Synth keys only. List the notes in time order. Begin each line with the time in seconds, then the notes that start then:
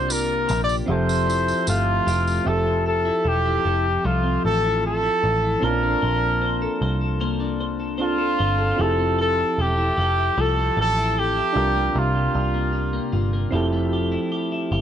Already playing: D4 F4 G4 A#4
0.86 C4 G4 E5
0.91 A4
2.44 C4 G4 E5
2.49 A4
5.60 C4 C#4 F4
5.65 D4 A5
7.98 C4 D4 F4 A4
8.76 C4 E4 G4
8.81 G#4
8.88 A4
11.53 D4 F4 G4
11.58 A#4
13.51 C4 E4 G4
13.55 A4